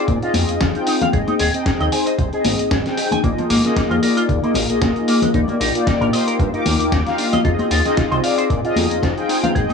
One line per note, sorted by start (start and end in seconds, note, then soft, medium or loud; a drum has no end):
0.00 0.19 C4 medium
0.00 0.19 D#4 medium
0.00 0.19 F4 medium
0.00 0.19 G#4 medium
0.00 0.19 D5 medium
0.08 0.19 A#2 medium
0.08 kick loud
0.08 closed hi-hat soft
0.22 0.71 C4 medium
0.22 0.72 D#4 medium
0.22 0.72 F4 medium
0.22 0.32 F4 medium
0.22 0.72 G#4 medium
0.22 0.72 D#5 medium
0.22 closed hi-hat soft
0.34 0.45 F2 medium
0.34 open hi-hat loud
0.34 high conga medium
0.49 0.58 F2 soft
0.49 closed hi-hat soft
0.61 0.71 F2 loud
0.61 0.65 F4 medium
0.61 kick loud
0.61 snare loud
0.61 closed hi-hat medium
0.74 1.10 C4 medium
0.74 1.10 D#4 medium
0.74 1.10 F4 medium
0.74 1.11 G#4 medium
0.74 1.11 G5 loud
0.74 closed hi-hat soft
0.87 0.94 D#4 medium
0.87 open hi-hat loud
1.01 1.08 F5 loud
1.01 closed hi-hat soft
1.01 high conga medium
1.01 low conga medium
1.13 1.24 G#1 loud
1.13 1.50 C4 medium
1.13 1.50 D#4 medium
1.13 1.51 G#4 medium
1.13 1.18 G#4 medium
1.13 1.51 D#5 medium
1.13 1.51 G5 medium
1.13 kick loud
1.13 closed hi-hat soft
1.28 1.34 D#4 medium
1.28 closed hi-hat soft
1.28 high conga medium
1.39 1.50 D#1 medium
1.39 1.51 G#4 loud
1.39 open hi-hat loud
1.53 1.89 C4 loud
1.53 1.89 D#4 medium
1.53 1.89 G#4 medium
1.53 1.90 D#5 loud
1.53 1.89 G5 medium
1.53 closed hi-hat medium
1.66 1.70 G#4 medium
1.66 kick loud
1.66 snare loud
1.66 closed hi-hat soft
1.80 1.89 D#2 medium
1.80 1.84 D#5 loud
1.80 closed hi-hat soft
1.92 2.29 C4 medium
1.92 2.30 D#4 medium
1.92 2.30 G#4 medium
1.92 2.30 C5 loud
1.92 2.03 G#5 medium
1.92 open hi-hat loud
2.07 2.13 D#5 loud
2.07 closed hi-hat soft
2.19 2.29 C2 loud
2.19 kick loud
2.19 closed hi-hat soft
2.33 2.82 C4 medium
2.33 2.82 D#4 medium
2.33 2.42 G#4 medium
2.33 2.82 G#4 medium
2.33 2.82 D#5 loud
2.33 closed hi-hat soft
2.45 2.55 G#1 medium
2.45 open hi-hat loud
2.45 high conga medium
2.59 2.69 G#1 soft
2.59 closed hi-hat soft
2.71 2.82 G#1 loud
2.71 2.76 G#4 medium
2.71 kick loud
2.71 snare loud
2.71 closed hi-hat soft
2.86 3.21 C4 medium
2.86 3.21 D#4 medium
2.86 3.21 G#4 medium
2.86 3.21 G5 loud
2.86 snare soft
2.86 closed hi-hat soft
2.97 3.05 G4 medium
2.97 open hi-hat medium
3.11 3.18 G#5 medium
3.11 closed hi-hat soft
3.11 high conga medium
3.11 low conga medium
3.24 3.34 A#1 loud
3.24 3.61 A#3 medium
3.24 3.28 A#3 medium
3.24 3.61 D#4 medium
3.24 3.61 F4 medium
3.24 3.62 G#4 medium
3.24 3.62 D#5 medium
3.24 kick loud
3.24 closed hi-hat soft
3.38 3.44 F3 medium
3.38 closed hi-hat soft
3.38 high conga medium
3.50 3.61 G#1 medium
3.50 3.61 A#3 loud
3.50 open hi-hat loud
3.65 4.00 A#3 loud
3.65 4.00 D#4 medium
3.65 4.00 F4 medium
3.65 4.00 G#4 medium
3.65 4.00 D#5 loud
3.65 snare soft
3.65 closed hi-hat soft
3.76 3.81 A#3 medium
3.76 kick loud
3.76 snare loud
3.76 closed hi-hat soft
3.91 4.00 F2 medium
3.91 3.94 F4 loud
3.91 closed hi-hat soft
4.02 4.40 A#3 medium
4.02 4.40 D#4 medium
4.02 4.40 F4 medium
4.02 4.40 G#4 medium
4.02 4.13 A#4 medium
4.02 4.40 D5 loud
4.02 open hi-hat medium
4.17 4.23 F4 loud
4.17 closed hi-hat soft
4.29 4.40 D#2 loud
4.29 kick loud
4.29 closed hi-hat soft
4.43 4.67 A#3 medium
4.43 4.52 A#3 medium
4.43 4.67 D#4 medium
4.43 4.67 F4 medium
4.43 4.67 G#4 medium
4.43 4.67 D#5 loud
4.43 closed hi-hat soft
4.54 4.66 A#1 medium
4.54 open hi-hat loud
4.54 high conga medium
4.69 4.79 A#1 soft
4.69 4.80 A#3 loud
4.69 4.80 D#4 medium
4.69 4.80 F4 medium
4.69 4.80 G#4 medium
4.69 4.80 D#5 loud
4.69 closed hi-hat soft
4.81 4.92 A#1 loud
4.81 4.89 A#2 medium
4.81 5.31 A#3 medium
4.81 5.31 D#4 medium
4.81 5.31 F4 medium
4.81 5.32 G#4 medium
4.81 5.32 D#5 loud
4.81 kick loud
4.81 snare loud
4.81 closed hi-hat medium
4.96 closed hi-hat soft
5.08 5.19 A#3 medium
5.08 open hi-hat loud
5.22 5.28 G#3 medium
5.22 closed hi-hat soft
5.22 high conga medium
5.22 low conga medium
5.34 5.45 D#2 loud
5.34 5.71 A#3 medium
5.34 5.71 D#4 medium
5.34 5.39 D#4 medium
5.34 5.72 F4 medium
5.34 5.72 G4 medium
5.34 5.72 D5 medium
5.34 kick loud
5.34 closed hi-hat soft
5.48 5.55 A#3 medium
5.48 closed hi-hat soft
5.48 high conga medium
5.60 5.71 A#1 medium
5.60 5.71 D#4 loud
5.60 open hi-hat loud
5.74 6.10 A#3 loud
5.74 6.10 D#4 medium
5.74 6.10 F4 medium
5.74 6.10 G4 medium
5.74 6.11 D5 loud
5.74 closed hi-hat soft
5.87 5.91 D#4 medium
5.87 kick loud
5.87 snare loud
5.87 closed hi-hat soft
6.01 6.10 A#1 medium
6.01 6.05 A#4 medium
6.01 closed hi-hat soft
6.12 6.50 A#3 medium
6.12 6.50 D#4 medium
6.12 6.50 F4 medium
6.12 6.50 G4 medium
6.12 6.51 C5 loud
6.12 6.24 D#5 medium
6.12 open hi-hat medium
6.27 6.34 A#4 loud
6.27 closed hi-hat soft
6.39 6.50 G2 loud
6.39 kick loud
6.39 closed hi-hat soft
6.53 7.03 A#3 medium
6.53 6.63 D#4 medium
6.53 7.03 D#4 medium
6.53 7.03 F4 medium
6.53 7.03 G4 medium
6.53 7.03 D6 medium
6.53 closed hi-hat soft
6.66 6.76 D#2 medium
6.66 open hi-hat loud
6.66 high conga medium
6.80 6.90 D#2 soft
6.80 closed hi-hat soft
6.92 7.03 D#2 loud
6.92 6.97 D#4 medium
6.92 kick loud
6.92 snare loud
6.92 closed hi-hat medium
7.06 7.42 A#3 medium
7.06 7.42 D#4 medium
7.06 7.42 F4 medium
7.06 7.42 G4 medium
7.06 7.42 F5 loud
7.06 snare soft
7.06 closed hi-hat soft
7.18 7.26 D4 medium
7.18 open hi-hat medium
7.33 7.39 D#5 loud
7.33 closed hi-hat medium
7.33 high conga medium
7.33 low conga medium
7.44 7.55 F2 loud
7.44 7.82 C4 medium
7.44 7.82 D#4 medium
7.44 7.49 F4 medium
7.44 7.82 F4 medium
7.44 7.82 G#4 medium
7.44 7.82 D#5 medium
7.44 kick loud
7.44 closed hi-hat soft
7.59 7.65 C4 medium
7.59 closed hi-hat soft
7.59 high conga medium
7.71 7.82 D#2 medium
7.71 7.82 F4 loud
7.71 open hi-hat loud
7.85 8.21 C4 loud
7.85 8.21 D#4 medium
7.85 8.21 F4 medium
7.85 8.21 G#4 medium
7.85 8.21 D#5 loud
7.85 snare soft
7.85 closed hi-hat soft
7.97 8.02 F4 medium
7.97 kick loud
7.97 snare loud
7.97 closed hi-hat medium
8.11 8.21 C2 medium
8.11 8.15 C5 loud
8.11 closed hi-hat soft
8.23 8.61 C4 medium
8.23 8.61 D#4 medium
8.23 8.61 F4 medium
8.23 8.61 G#4 medium
8.23 8.61 D5 loud
8.23 8.35 F5 medium
8.23 open hi-hat medium
8.38 8.44 C5 medium
8.38 closed hi-hat medium
8.50 8.61 A#2 medium
8.50 kick loud
8.50 closed hi-hat soft
8.64 9.14 C4 medium
8.64 9.14 D#4 medium
8.64 9.14 F4 medium
8.64 8.74 F4 medium
8.64 9.14 G#4 medium
8.64 9.14 D#5 loud
8.64 closed hi-hat soft
8.76 8.87 F2 medium
8.76 open hi-hat medium
8.76 high conga medium
8.91 9.00 F2 soft
8.91 closed hi-hat medium
9.03 9.13 F2 loud
9.03 9.07 F4 medium
9.03 kick loud
9.03 snare loud
9.03 closed hi-hat medium
9.16 9.52 C4 medium
9.16 9.52 D#4 medium
9.16 9.52 F4 medium
9.16 9.53 G#4 medium
9.16 9.53 G5 loud
9.16 closed hi-hat soft
9.29 9.36 D#4 medium
9.29 open hi-hat medium
9.43 9.49 F5 loud
9.43 closed hi-hat medium
9.43 high conga medium
9.43 low conga medium
9.55 9.66 G#1 loud
9.55 9.73 C4 medium
9.55 9.73 D#4 medium
9.55 9.60 G#4 medium
9.55 9.73 G#4 medium
9.55 9.73 D#5 medium
9.55 9.73 G5 medium
9.55 kick loud
9.55 closed hi-hat medium
9.69 9.73 D#4 medium
9.69 closed hi-hat soft
9.69 high conga medium